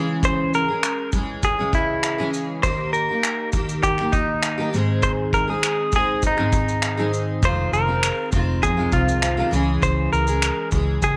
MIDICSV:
0, 0, Header, 1, 5, 480
1, 0, Start_track
1, 0, Key_signature, -4, "major"
1, 0, Tempo, 600000
1, 180, Time_signature, 4, 2, 24, 8
1, 8934, End_track
2, 0, Start_track
2, 0, Title_t, "Clean electric guitar"
2, 0, Program_c, 0, 27
2, 200, Note_on_c, 0, 72, 87
2, 436, Note_off_c, 0, 72, 0
2, 440, Note_on_c, 0, 70, 93
2, 878, Note_off_c, 0, 70, 0
2, 1157, Note_on_c, 0, 68, 79
2, 1373, Note_off_c, 0, 68, 0
2, 1398, Note_on_c, 0, 64, 82
2, 1838, Note_off_c, 0, 64, 0
2, 2106, Note_on_c, 0, 72, 101
2, 2341, Note_off_c, 0, 72, 0
2, 2344, Note_on_c, 0, 70, 90
2, 2791, Note_off_c, 0, 70, 0
2, 3068, Note_on_c, 0, 67, 95
2, 3299, Note_on_c, 0, 63, 84
2, 3312, Note_off_c, 0, 67, 0
2, 3748, Note_off_c, 0, 63, 0
2, 4026, Note_on_c, 0, 72, 95
2, 4091, Note_off_c, 0, 72, 0
2, 4272, Note_on_c, 0, 70, 93
2, 4398, Note_off_c, 0, 70, 0
2, 4398, Note_on_c, 0, 68, 81
2, 4758, Note_off_c, 0, 68, 0
2, 4768, Note_on_c, 0, 68, 80
2, 4979, Note_off_c, 0, 68, 0
2, 5014, Note_on_c, 0, 63, 63
2, 5686, Note_off_c, 0, 63, 0
2, 5961, Note_on_c, 0, 72, 93
2, 6175, Note_off_c, 0, 72, 0
2, 6187, Note_on_c, 0, 70, 83
2, 6632, Note_off_c, 0, 70, 0
2, 6904, Note_on_c, 0, 68, 91
2, 7126, Note_off_c, 0, 68, 0
2, 7146, Note_on_c, 0, 65, 80
2, 7591, Note_off_c, 0, 65, 0
2, 7864, Note_on_c, 0, 72, 84
2, 8097, Note_off_c, 0, 72, 0
2, 8101, Note_on_c, 0, 70, 88
2, 8548, Note_off_c, 0, 70, 0
2, 8831, Note_on_c, 0, 68, 89
2, 8934, Note_off_c, 0, 68, 0
2, 8934, End_track
3, 0, Start_track
3, 0, Title_t, "Steel-string acoustic guitar"
3, 0, Program_c, 1, 25
3, 0, Note_on_c, 1, 49, 69
3, 0, Note_on_c, 1, 52, 74
3, 0, Note_on_c, 1, 56, 72
3, 0, Note_on_c, 1, 61, 70
3, 0, Note_on_c, 1, 68, 76
3, 537, Note_off_c, 1, 68, 0
3, 543, Note_off_c, 1, 49, 0
3, 546, Note_off_c, 1, 52, 0
3, 546, Note_on_c, 1, 68, 41
3, 548, Note_off_c, 1, 56, 0
3, 549, Note_off_c, 1, 61, 0
3, 563, Note_on_c, 1, 61, 40
3, 570, Note_on_c, 1, 56, 36
3, 901, Note_on_c, 1, 52, 51
3, 903, Note_off_c, 1, 56, 0
3, 904, Note_off_c, 1, 68, 0
3, 912, Note_off_c, 1, 61, 0
3, 913, Note_on_c, 1, 56, 56
3, 922, Note_on_c, 1, 61, 62
3, 929, Note_on_c, 1, 68, 63
3, 1261, Note_off_c, 1, 52, 0
3, 1261, Note_off_c, 1, 68, 0
3, 1265, Note_off_c, 1, 61, 0
3, 1267, Note_off_c, 1, 56, 0
3, 1271, Note_on_c, 1, 68, 54
3, 1275, Note_on_c, 1, 61, 52
3, 1282, Note_on_c, 1, 56, 53
3, 1287, Note_on_c, 1, 52, 49
3, 1289, Note_on_c, 1, 49, 46
3, 1737, Note_off_c, 1, 68, 0
3, 1746, Note_off_c, 1, 61, 0
3, 1746, Note_on_c, 1, 68, 67
3, 1747, Note_off_c, 1, 56, 0
3, 1754, Note_off_c, 1, 52, 0
3, 1755, Note_off_c, 1, 49, 0
3, 1756, Note_on_c, 1, 61, 64
3, 1757, Note_on_c, 1, 56, 62
3, 1763, Note_on_c, 1, 52, 58
3, 1768, Note_on_c, 1, 49, 52
3, 2104, Note_off_c, 1, 68, 0
3, 2106, Note_off_c, 1, 52, 0
3, 2109, Note_off_c, 1, 56, 0
3, 2109, Note_off_c, 1, 61, 0
3, 2109, Note_on_c, 1, 51, 66
3, 2115, Note_off_c, 1, 49, 0
3, 2117, Note_on_c, 1, 58, 72
3, 2121, Note_on_c, 1, 63, 78
3, 2126, Note_on_c, 1, 67, 76
3, 2461, Note_off_c, 1, 67, 0
3, 2466, Note_off_c, 1, 51, 0
3, 2470, Note_off_c, 1, 58, 0
3, 2471, Note_off_c, 1, 63, 0
3, 2471, Note_on_c, 1, 67, 48
3, 2487, Note_on_c, 1, 63, 42
3, 2497, Note_on_c, 1, 58, 37
3, 2826, Note_off_c, 1, 67, 0
3, 2827, Note_off_c, 1, 58, 0
3, 2830, Note_on_c, 1, 51, 58
3, 2835, Note_off_c, 1, 63, 0
3, 2837, Note_on_c, 1, 58, 59
3, 2850, Note_on_c, 1, 63, 60
3, 2856, Note_on_c, 1, 67, 60
3, 3180, Note_off_c, 1, 67, 0
3, 3186, Note_off_c, 1, 51, 0
3, 3188, Note_off_c, 1, 63, 0
3, 3189, Note_off_c, 1, 58, 0
3, 3190, Note_on_c, 1, 67, 63
3, 3198, Note_on_c, 1, 63, 63
3, 3205, Note_on_c, 1, 58, 56
3, 3207, Note_on_c, 1, 51, 43
3, 3652, Note_off_c, 1, 67, 0
3, 3662, Note_on_c, 1, 67, 67
3, 3666, Note_off_c, 1, 58, 0
3, 3667, Note_off_c, 1, 63, 0
3, 3671, Note_on_c, 1, 63, 56
3, 3676, Note_off_c, 1, 51, 0
3, 3676, Note_on_c, 1, 58, 51
3, 3680, Note_on_c, 1, 51, 49
3, 3779, Note_off_c, 1, 51, 0
3, 3782, Note_off_c, 1, 67, 0
3, 3782, Note_on_c, 1, 44, 76
3, 3786, Note_off_c, 1, 63, 0
3, 3789, Note_off_c, 1, 58, 0
3, 3789, Note_on_c, 1, 51, 76
3, 3794, Note_on_c, 1, 56, 76
3, 3795, Note_on_c, 1, 60, 81
3, 3800, Note_on_c, 1, 63, 75
3, 3805, Note_on_c, 1, 68, 81
3, 4378, Note_off_c, 1, 68, 0
3, 4381, Note_on_c, 1, 68, 45
3, 4382, Note_off_c, 1, 44, 0
3, 4387, Note_off_c, 1, 63, 0
3, 4391, Note_on_c, 1, 63, 45
3, 4398, Note_off_c, 1, 60, 0
3, 4401, Note_on_c, 1, 60, 44
3, 4405, Note_off_c, 1, 56, 0
3, 4408, Note_on_c, 1, 56, 36
3, 4734, Note_off_c, 1, 56, 0
3, 4742, Note_off_c, 1, 68, 0
3, 4744, Note_on_c, 1, 56, 54
3, 4745, Note_off_c, 1, 60, 0
3, 4746, Note_off_c, 1, 63, 0
3, 4754, Note_on_c, 1, 60, 52
3, 4761, Note_on_c, 1, 63, 64
3, 4766, Note_on_c, 1, 68, 61
3, 5085, Note_off_c, 1, 68, 0
3, 5089, Note_off_c, 1, 63, 0
3, 5095, Note_off_c, 1, 60, 0
3, 5095, Note_on_c, 1, 68, 58
3, 5096, Note_off_c, 1, 56, 0
3, 5098, Note_on_c, 1, 63, 54
3, 5103, Note_off_c, 1, 51, 0
3, 5105, Note_on_c, 1, 56, 51
3, 5105, Note_on_c, 1, 60, 54
3, 5106, Note_on_c, 1, 51, 49
3, 5111, Note_on_c, 1, 44, 48
3, 5575, Note_off_c, 1, 68, 0
3, 5579, Note_on_c, 1, 68, 73
3, 5582, Note_off_c, 1, 63, 0
3, 5584, Note_off_c, 1, 60, 0
3, 5585, Note_on_c, 1, 63, 66
3, 5586, Note_off_c, 1, 44, 0
3, 5587, Note_on_c, 1, 60, 67
3, 5589, Note_off_c, 1, 56, 0
3, 5590, Note_off_c, 1, 51, 0
3, 5592, Note_on_c, 1, 56, 68
3, 5593, Note_on_c, 1, 51, 58
3, 5597, Note_on_c, 1, 44, 57
3, 5937, Note_off_c, 1, 44, 0
3, 5940, Note_off_c, 1, 68, 0
3, 5940, Note_on_c, 1, 41, 63
3, 5941, Note_off_c, 1, 51, 0
3, 5943, Note_off_c, 1, 63, 0
3, 5944, Note_off_c, 1, 60, 0
3, 5945, Note_on_c, 1, 48, 64
3, 5946, Note_off_c, 1, 56, 0
3, 5950, Note_on_c, 1, 51, 79
3, 5954, Note_on_c, 1, 60, 71
3, 5955, Note_on_c, 1, 56, 72
3, 5957, Note_on_c, 1, 65, 69
3, 6286, Note_off_c, 1, 65, 0
3, 6295, Note_off_c, 1, 60, 0
3, 6295, Note_on_c, 1, 65, 42
3, 6301, Note_off_c, 1, 41, 0
3, 6303, Note_off_c, 1, 48, 0
3, 6305, Note_on_c, 1, 60, 46
3, 6306, Note_off_c, 1, 51, 0
3, 6306, Note_off_c, 1, 56, 0
3, 6315, Note_on_c, 1, 56, 33
3, 6321, Note_on_c, 1, 51, 37
3, 6647, Note_off_c, 1, 51, 0
3, 6656, Note_on_c, 1, 51, 59
3, 6657, Note_off_c, 1, 56, 0
3, 6658, Note_off_c, 1, 65, 0
3, 6663, Note_off_c, 1, 60, 0
3, 6666, Note_on_c, 1, 56, 52
3, 6673, Note_on_c, 1, 60, 61
3, 6680, Note_on_c, 1, 65, 65
3, 7005, Note_off_c, 1, 65, 0
3, 7009, Note_off_c, 1, 60, 0
3, 7012, Note_off_c, 1, 56, 0
3, 7014, Note_on_c, 1, 65, 55
3, 7018, Note_off_c, 1, 51, 0
3, 7019, Note_on_c, 1, 60, 54
3, 7022, Note_on_c, 1, 56, 50
3, 7027, Note_on_c, 1, 51, 53
3, 7028, Note_on_c, 1, 48, 47
3, 7034, Note_on_c, 1, 41, 45
3, 7488, Note_off_c, 1, 65, 0
3, 7491, Note_off_c, 1, 60, 0
3, 7497, Note_on_c, 1, 65, 68
3, 7499, Note_off_c, 1, 56, 0
3, 7500, Note_off_c, 1, 51, 0
3, 7500, Note_on_c, 1, 60, 63
3, 7502, Note_off_c, 1, 48, 0
3, 7503, Note_on_c, 1, 56, 54
3, 7507, Note_off_c, 1, 41, 0
3, 7510, Note_on_c, 1, 51, 53
3, 7512, Note_on_c, 1, 48, 53
3, 7515, Note_on_c, 1, 41, 53
3, 7604, Note_off_c, 1, 48, 0
3, 7607, Note_on_c, 1, 49, 78
3, 7611, Note_off_c, 1, 56, 0
3, 7614, Note_off_c, 1, 51, 0
3, 7617, Note_on_c, 1, 52, 82
3, 7619, Note_off_c, 1, 65, 0
3, 7620, Note_off_c, 1, 60, 0
3, 7621, Note_on_c, 1, 56, 78
3, 7626, Note_on_c, 1, 61, 76
3, 7628, Note_off_c, 1, 41, 0
3, 7629, Note_on_c, 1, 68, 80
3, 8205, Note_off_c, 1, 68, 0
3, 8213, Note_off_c, 1, 49, 0
3, 8215, Note_on_c, 1, 68, 47
3, 8218, Note_off_c, 1, 52, 0
3, 8219, Note_off_c, 1, 61, 0
3, 8220, Note_off_c, 1, 56, 0
3, 8229, Note_on_c, 1, 61, 39
3, 8243, Note_on_c, 1, 56, 34
3, 8571, Note_off_c, 1, 56, 0
3, 8571, Note_on_c, 1, 52, 53
3, 8577, Note_off_c, 1, 68, 0
3, 8581, Note_off_c, 1, 61, 0
3, 8581, Note_on_c, 1, 56, 55
3, 8590, Note_on_c, 1, 61, 60
3, 8596, Note_on_c, 1, 68, 57
3, 8925, Note_off_c, 1, 68, 0
3, 8930, Note_off_c, 1, 61, 0
3, 8934, Note_off_c, 1, 52, 0
3, 8934, Note_off_c, 1, 56, 0
3, 8934, End_track
4, 0, Start_track
4, 0, Title_t, "Fingered electric bass"
4, 0, Program_c, 2, 33
4, 5941, Note_on_c, 2, 29, 70
4, 6138, Note_off_c, 2, 29, 0
4, 6179, Note_on_c, 2, 29, 75
4, 6475, Note_off_c, 2, 29, 0
4, 6660, Note_on_c, 2, 29, 94
4, 6902, Note_on_c, 2, 41, 84
4, 6914, Note_off_c, 2, 29, 0
4, 7098, Note_off_c, 2, 41, 0
4, 7136, Note_on_c, 2, 36, 75
4, 7532, Note_off_c, 2, 36, 0
4, 7621, Note_on_c, 2, 37, 80
4, 7817, Note_off_c, 2, 37, 0
4, 7861, Note_on_c, 2, 37, 78
4, 8057, Note_off_c, 2, 37, 0
4, 8101, Note_on_c, 2, 37, 78
4, 8395, Note_off_c, 2, 37, 0
4, 8577, Note_on_c, 2, 37, 84
4, 8775, Note_off_c, 2, 37, 0
4, 8818, Note_on_c, 2, 49, 80
4, 8934, Note_off_c, 2, 49, 0
4, 8934, End_track
5, 0, Start_track
5, 0, Title_t, "Drums"
5, 184, Note_on_c, 9, 36, 91
5, 187, Note_on_c, 9, 82, 56
5, 264, Note_off_c, 9, 36, 0
5, 267, Note_off_c, 9, 82, 0
5, 429, Note_on_c, 9, 82, 32
5, 509, Note_off_c, 9, 82, 0
5, 665, Note_on_c, 9, 26, 116
5, 669, Note_on_c, 9, 82, 73
5, 745, Note_off_c, 9, 26, 0
5, 749, Note_off_c, 9, 82, 0
5, 898, Note_on_c, 9, 82, 47
5, 904, Note_on_c, 9, 36, 79
5, 978, Note_off_c, 9, 82, 0
5, 984, Note_off_c, 9, 36, 0
5, 1143, Note_on_c, 9, 82, 59
5, 1145, Note_on_c, 9, 36, 80
5, 1223, Note_off_c, 9, 82, 0
5, 1225, Note_off_c, 9, 36, 0
5, 1384, Note_on_c, 9, 36, 91
5, 1384, Note_on_c, 9, 82, 38
5, 1464, Note_off_c, 9, 36, 0
5, 1464, Note_off_c, 9, 82, 0
5, 1624, Note_on_c, 9, 26, 80
5, 1626, Note_on_c, 9, 82, 47
5, 1704, Note_off_c, 9, 26, 0
5, 1706, Note_off_c, 9, 82, 0
5, 1868, Note_on_c, 9, 82, 46
5, 1948, Note_off_c, 9, 82, 0
5, 2107, Note_on_c, 9, 36, 86
5, 2107, Note_on_c, 9, 82, 51
5, 2187, Note_off_c, 9, 36, 0
5, 2187, Note_off_c, 9, 82, 0
5, 2350, Note_on_c, 9, 82, 35
5, 2430, Note_off_c, 9, 82, 0
5, 2587, Note_on_c, 9, 26, 111
5, 2590, Note_on_c, 9, 82, 69
5, 2667, Note_off_c, 9, 26, 0
5, 2670, Note_off_c, 9, 82, 0
5, 2819, Note_on_c, 9, 82, 44
5, 2826, Note_on_c, 9, 36, 81
5, 2899, Note_off_c, 9, 82, 0
5, 2906, Note_off_c, 9, 36, 0
5, 2951, Note_on_c, 9, 82, 50
5, 3031, Note_off_c, 9, 82, 0
5, 3066, Note_on_c, 9, 82, 60
5, 3067, Note_on_c, 9, 36, 70
5, 3146, Note_off_c, 9, 82, 0
5, 3147, Note_off_c, 9, 36, 0
5, 3184, Note_on_c, 9, 26, 28
5, 3264, Note_off_c, 9, 26, 0
5, 3300, Note_on_c, 9, 82, 40
5, 3304, Note_on_c, 9, 36, 91
5, 3380, Note_off_c, 9, 82, 0
5, 3384, Note_off_c, 9, 36, 0
5, 3540, Note_on_c, 9, 26, 92
5, 3542, Note_on_c, 9, 82, 51
5, 3620, Note_off_c, 9, 26, 0
5, 3622, Note_off_c, 9, 82, 0
5, 3789, Note_on_c, 9, 82, 42
5, 3869, Note_off_c, 9, 82, 0
5, 4021, Note_on_c, 9, 82, 56
5, 4023, Note_on_c, 9, 36, 92
5, 4101, Note_off_c, 9, 82, 0
5, 4103, Note_off_c, 9, 36, 0
5, 4263, Note_on_c, 9, 36, 75
5, 4267, Note_on_c, 9, 82, 32
5, 4343, Note_off_c, 9, 36, 0
5, 4347, Note_off_c, 9, 82, 0
5, 4504, Note_on_c, 9, 26, 110
5, 4508, Note_on_c, 9, 82, 72
5, 4584, Note_off_c, 9, 26, 0
5, 4588, Note_off_c, 9, 82, 0
5, 4736, Note_on_c, 9, 82, 47
5, 4743, Note_on_c, 9, 36, 83
5, 4816, Note_off_c, 9, 82, 0
5, 4823, Note_off_c, 9, 36, 0
5, 4979, Note_on_c, 9, 82, 57
5, 4983, Note_on_c, 9, 36, 70
5, 5059, Note_off_c, 9, 82, 0
5, 5063, Note_off_c, 9, 36, 0
5, 5102, Note_on_c, 9, 26, 32
5, 5182, Note_off_c, 9, 26, 0
5, 5220, Note_on_c, 9, 82, 46
5, 5221, Note_on_c, 9, 36, 90
5, 5300, Note_off_c, 9, 82, 0
5, 5301, Note_off_c, 9, 36, 0
5, 5348, Note_on_c, 9, 82, 42
5, 5428, Note_off_c, 9, 82, 0
5, 5457, Note_on_c, 9, 26, 82
5, 5459, Note_on_c, 9, 82, 47
5, 5537, Note_off_c, 9, 26, 0
5, 5539, Note_off_c, 9, 82, 0
5, 5707, Note_on_c, 9, 82, 44
5, 5787, Note_off_c, 9, 82, 0
5, 5941, Note_on_c, 9, 82, 53
5, 5942, Note_on_c, 9, 36, 98
5, 6021, Note_off_c, 9, 82, 0
5, 6022, Note_off_c, 9, 36, 0
5, 6186, Note_on_c, 9, 82, 33
5, 6266, Note_off_c, 9, 82, 0
5, 6423, Note_on_c, 9, 26, 106
5, 6427, Note_on_c, 9, 82, 72
5, 6503, Note_off_c, 9, 26, 0
5, 6507, Note_off_c, 9, 82, 0
5, 6655, Note_on_c, 9, 82, 44
5, 6662, Note_on_c, 9, 36, 82
5, 6735, Note_off_c, 9, 82, 0
5, 6742, Note_off_c, 9, 36, 0
5, 6903, Note_on_c, 9, 36, 80
5, 6904, Note_on_c, 9, 82, 64
5, 6983, Note_off_c, 9, 36, 0
5, 6984, Note_off_c, 9, 82, 0
5, 7136, Note_on_c, 9, 82, 41
5, 7139, Note_on_c, 9, 36, 95
5, 7216, Note_off_c, 9, 82, 0
5, 7219, Note_off_c, 9, 36, 0
5, 7267, Note_on_c, 9, 82, 47
5, 7347, Note_off_c, 9, 82, 0
5, 7378, Note_on_c, 9, 26, 90
5, 7380, Note_on_c, 9, 82, 52
5, 7458, Note_off_c, 9, 26, 0
5, 7460, Note_off_c, 9, 82, 0
5, 7625, Note_on_c, 9, 82, 45
5, 7705, Note_off_c, 9, 82, 0
5, 7860, Note_on_c, 9, 36, 84
5, 7861, Note_on_c, 9, 82, 54
5, 7940, Note_off_c, 9, 36, 0
5, 7941, Note_off_c, 9, 82, 0
5, 8104, Note_on_c, 9, 82, 34
5, 8184, Note_off_c, 9, 82, 0
5, 8218, Note_on_c, 9, 82, 43
5, 8298, Note_off_c, 9, 82, 0
5, 8338, Note_on_c, 9, 26, 106
5, 8341, Note_on_c, 9, 82, 80
5, 8418, Note_off_c, 9, 26, 0
5, 8421, Note_off_c, 9, 82, 0
5, 8570, Note_on_c, 9, 82, 49
5, 8578, Note_on_c, 9, 36, 84
5, 8650, Note_off_c, 9, 82, 0
5, 8658, Note_off_c, 9, 36, 0
5, 8817, Note_on_c, 9, 82, 60
5, 8819, Note_on_c, 9, 36, 78
5, 8897, Note_off_c, 9, 82, 0
5, 8899, Note_off_c, 9, 36, 0
5, 8934, End_track
0, 0, End_of_file